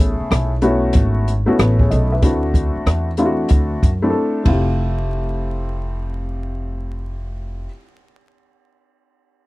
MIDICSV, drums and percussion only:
0, 0, Header, 1, 2, 480
1, 0, Start_track
1, 0, Key_signature, -1, "major"
1, 0, Tempo, 638298
1, 1669, Time_signature, 4, 2, 24, 8
1, 7120, End_track
2, 0, Start_track
2, 0, Title_t, "Drums"
2, 0, Note_on_c, 9, 42, 67
2, 72, Note_off_c, 9, 42, 0
2, 237, Note_on_c, 9, 37, 101
2, 237, Note_on_c, 9, 42, 79
2, 312, Note_off_c, 9, 37, 0
2, 312, Note_off_c, 9, 42, 0
2, 464, Note_on_c, 9, 42, 62
2, 539, Note_off_c, 9, 42, 0
2, 699, Note_on_c, 9, 42, 91
2, 716, Note_on_c, 9, 36, 90
2, 774, Note_off_c, 9, 42, 0
2, 791, Note_off_c, 9, 36, 0
2, 961, Note_on_c, 9, 42, 64
2, 1036, Note_off_c, 9, 42, 0
2, 1196, Note_on_c, 9, 42, 87
2, 1200, Note_on_c, 9, 37, 108
2, 1271, Note_off_c, 9, 42, 0
2, 1275, Note_off_c, 9, 37, 0
2, 1348, Note_on_c, 9, 36, 80
2, 1423, Note_off_c, 9, 36, 0
2, 1439, Note_on_c, 9, 42, 62
2, 1514, Note_off_c, 9, 42, 0
2, 1672, Note_on_c, 9, 42, 90
2, 1674, Note_on_c, 9, 36, 91
2, 1748, Note_off_c, 9, 42, 0
2, 1749, Note_off_c, 9, 36, 0
2, 1910, Note_on_c, 9, 36, 83
2, 1916, Note_on_c, 9, 42, 64
2, 1986, Note_off_c, 9, 36, 0
2, 1991, Note_off_c, 9, 42, 0
2, 2157, Note_on_c, 9, 37, 91
2, 2157, Note_on_c, 9, 42, 88
2, 2232, Note_off_c, 9, 37, 0
2, 2232, Note_off_c, 9, 42, 0
2, 2386, Note_on_c, 9, 42, 60
2, 2461, Note_off_c, 9, 42, 0
2, 2621, Note_on_c, 9, 42, 79
2, 2638, Note_on_c, 9, 36, 80
2, 2696, Note_off_c, 9, 42, 0
2, 2713, Note_off_c, 9, 36, 0
2, 2877, Note_on_c, 9, 36, 73
2, 2881, Note_on_c, 9, 42, 62
2, 2953, Note_off_c, 9, 36, 0
2, 2956, Note_off_c, 9, 42, 0
2, 3350, Note_on_c, 9, 51, 65
2, 3351, Note_on_c, 9, 36, 83
2, 3426, Note_off_c, 9, 36, 0
2, 3426, Note_off_c, 9, 51, 0
2, 7120, End_track
0, 0, End_of_file